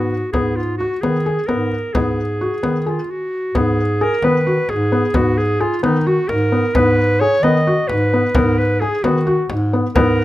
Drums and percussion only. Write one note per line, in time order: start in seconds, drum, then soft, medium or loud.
0.11 frame drum soft
0.34 frame drum soft
0.80 frame drum soft
1.03 frame drum soft
1.26 frame drum soft
1.49 frame drum soft
1.72 frame drum soft
1.95 frame drum medium
2.64 frame drum soft
3.55 frame drum medium
4.00 frame drum soft
4.22 frame drum soft
4.69 frame drum soft
5.14 frame drum medium
5.61 frame drum soft
5.84 frame drum soft
6.29 frame drum soft
6.75 frame drum medium
7.43 frame drum soft
7.89 frame drum soft
8.35 frame drum medium
9.04 frame drum medium
9.27 frame drum soft
9.50 frame drum soft
9.96 frame drum medium